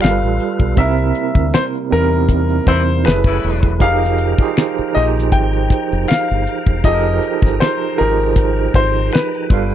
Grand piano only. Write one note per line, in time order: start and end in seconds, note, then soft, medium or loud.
0.02 0.80 F5 medium
0.78 1.49 E5 medium
1.54 1.63 C5 medium
1.92 2.64 A#4 medium
2.68 3.06 C5 medium
3.06 3.83 B4 medium
3.81 4.98 F5 medium
4.95 5.03 D#5 medium
5.32 6.04 G5 medium
6.08 6.80 F5 medium
6.85 7.63 D#5 medium
7.60 8.00 C5 medium
7.98 8.77 A#4 medium
8.75 9.14 C5 medium
9.13 9.75 B4 medium